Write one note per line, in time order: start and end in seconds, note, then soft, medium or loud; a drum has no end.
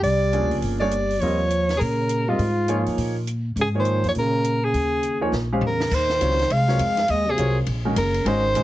0.02 0.39 C2 medium
0.02 0.57 G3 medium
0.02 0.58 D5 loud
0.02 open hi-hat soft
0.32 0.77 F3 medium
0.32 0.77 A#3 medium
0.32 0.77 C#4 medium
0.32 0.77 D4 medium
0.32 0.77 G#4 medium
0.32 closed hi-hat soft
0.41 0.51 D2 medium
0.51 0.61 C#2 medium
0.51 open hi-hat soft
0.61 1.18 G1 medium
0.61 open hi-hat soft
0.79 1.21 G3 medium
0.79 0.91 G3 medium
0.79 0.91 A#3 medium
0.79 0.91 D4 medium
0.79 0.91 G#4 medium
0.79 0.91 C#5 medium
0.79 1.22 D5 medium
0.91 closed hi-hat medium
1.10 open hi-hat soft
1.19 1.77 D#2 medium
1.19 1.76 F3 medium
1.19 1.38 G3 medium
1.19 1.38 C4 medium
1.19 1.39 F4 medium
1.19 1.38 A#4 medium
1.19 1.78 C#5 medium
1.19 1.39 D#5 medium
1.19 open hi-hat soft
1.50 closed hi-hat soft
1.69 snare soft
1.69 open hi-hat soft
1.74 1.81 C3 medium
1.74 1.81 G#4 medium
1.79 2.36 A#2 medium
1.79 2.28 C#3 medium
1.79 2.30 A#4 medium
1.79 open hi-hat soft
2.09 closed hi-hat medium
2.27 2.86 G#2 medium
2.27 2.38 G3 medium
2.27 2.38 C4 medium
2.27 2.38 F4 medium
2.27 2.87 F4 medium
2.27 2.38 A#4 medium
2.27 2.39 D#5 medium
2.38 2.83 G#2 medium
2.38 open hi-hat soft
2.68 3.12 F3 medium
2.68 3.13 A#3 medium
2.68 3.12 D#4 medium
2.68 3.13 G#4 medium
2.68 3.13 C#5 medium
2.68 closed hi-hat soft
2.86 2.97 F2 medium
2.86 open hi-hat soft
2.97 3.53 A#2 medium
2.97 open hi-hat soft
3.27 closed hi-hat medium
3.56 4.01 G#2 medium
3.56 3.67 C#3 medium
3.56 open hi-hat soft
3.61 3.68 G#4 medium
3.75 4.04 D#3 medium
3.75 4.13 F3 medium
3.75 4.13 A#3 medium
3.75 4.13 D#4 medium
3.75 4.13 G#4 medium
3.75 4.13 C#5 medium
3.79 4.05 C5 medium
3.85 closed hi-hat soft
4.03 4.14 F2 medium
4.03 4.10 F3 medium
4.03 open hi-hat soft
4.09 4.13 C#5 medium
4.15 4.71 A#2 medium
4.15 4.63 C#3 medium
4.15 open hi-hat soft
4.19 4.66 A#4 medium
4.44 closed hi-hat medium
4.63 5.22 C#3 medium
4.63 5.22 G#4 medium
4.74 5.30 D#2 medium
4.74 open hi-hat soft
5.03 closed hi-hat soft
5.21 5.32 F3 medium
5.21 5.32 A#3 medium
5.21 5.32 D#4 medium
5.21 5.32 G#4 medium
5.21 5.32 C#5 medium
5.32 5.60 A#1 medium
5.32 snare soft
5.52 5.62 G#3 medium
5.52 5.62 C#4 medium
5.52 5.62 G4 medium
5.52 5.62 C5 medium
5.52 5.62 F5 medium
5.61 5.89 E2 medium
5.61 floor tom medium
5.66 5.95 C#3 medium
5.66 5.96 A#4 medium
5.80 snare medium
5.91 6.20 D#2 medium
5.91 6.54 D#3 medium
5.91 6.54 C5 medium
5.91 kick medium
5.91 crash medium
6.10 snare soft
6.21 6.49 C#2 medium
6.21 6.37 F#3 medium
6.21 6.38 C4 medium
6.21 6.38 F4 soft
6.21 6.38 A#4 medium
6.21 6.38 C#5 medium
6.21 hi-hat pedal medium
6.21 ride medium
6.31 snare soft
6.39 snare soft
6.39 ride soft
6.50 6.78 C2 medium
6.50 7.08 G#3 medium
6.50 7.12 F5 loud
6.50 ride medium
6.68 6.78 F#3 medium
6.68 6.78 C4 medium
6.68 6.78 F4 medium
6.68 6.78 A#4 medium
6.68 6.79 C#5 medium
6.68 snare soft
6.79 7.08 F2 medium
6.79 hi-hat pedal medium
6.79 ride medium
6.97 snare soft
6.97 ride soft
7.08 7.37 D#2 medium
7.08 7.28 G#3 medium
7.08 7.32 D#5 loud
7.08 ride medium
7.27 7.56 C3 medium
7.27 7.58 G#4 medium
7.37 7.66 C2 medium
7.37 7.54 F#3 medium
7.37 7.55 C4 medium
7.37 7.55 F4 medium
7.37 7.55 A#4 medium
7.37 7.55 C#5 medium
7.37 hi-hat pedal medium
7.37 ride medium
7.66 7.96 A#1 medium
7.66 ride medium
7.85 7.95 D#3 medium
7.85 7.95 G#3 medium
7.85 7.95 C#4 medium
7.85 7.96 F#4 medium
7.85 7.96 A#4 medium
7.96 8.24 F#1 medium
7.96 8.27 C#3 medium
7.96 8.29 A#4 medium
7.96 hi-hat pedal medium
7.96 ride medium
8.14 ride soft
8.25 8.53 G#1 medium
8.25 8.63 D#3 medium
8.25 8.42 G#3 medium
8.25 8.43 C#4 medium
8.25 8.43 F#4 medium
8.25 8.43 C5 medium
8.25 8.63 C5 loud
8.25 8.43 D#5 medium
8.25 ride medium
8.54 8.63 A#1 medium
8.54 8.63 D#3 medium
8.54 8.63 G#3 medium
8.54 8.63 C#4 medium
8.54 8.63 F#4 medium
8.54 8.63 A#4 medium
8.54 hi-hat pedal medium
8.54 ride medium